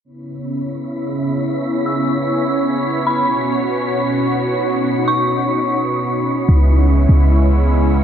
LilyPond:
<<
  \new Staff \with { instrumentName = "Synth bell" } { \time 4/4 \key cis \dorian \tempo 4 = 149 r1 | r8 e'''2. b''8 | r1 | r8 cis'''2.~ cis'''8 |
r1 | }
  \new Staff \with { instrumentName = "Synth texture" } { \time 4/4 \key cis \dorian << { <cis'' b''>1~ | <cis'' b''>1~ | <cis'' b''>1~ | <cis'' b''>1 |
<cis'' b''>1 | } \\ { e'1~ | e'1 | dis'1~ | dis'1 |
e'1 | } >> }
  \new Staff \with { instrumentName = "Analog synth pad" } { \time 4/4 \key cis \dorian << { <b cis' cis''>1~ | <b cis' cis''>1~ | <b cis' cis''>1~ | <b cis' cis''>1 |
<gis b e'>1 | } \\ { <cis e'>1~ | <cis e'>1 | <b, fis'>1~ | <b, fis'>1 |
<cis cis'>1 | } >> }
  \new Staff \with { instrumentName = "808-style bass" } { \clef bass \time 4/4 \key cis \dorian r1 | r1 | r1 | r1 |
cis,4. cis,2~ cis,8 | }
>>